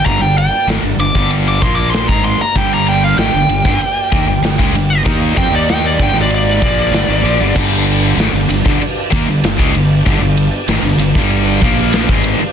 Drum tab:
CC |----------------|----------------|----------------|x---------------|
RD |x-x-x-x-x-x-x-x-|x-x-x-x-x-x-x-x-|x-x-x-x-x-x-x-x-|--x-x-x-x-x-x-x-|
SD |----o-------o---|----o--o----o---|----o-------o---|----o--o----o---|
BD |o------o--o--o--|o------o--o--o--|o-o---o---o-----|o------o--o--o--|

CC |----------------|
RD |x-x-x-x-x-x-x-x-|
SD |----o--o----o---|
BD |o------o--o--o--|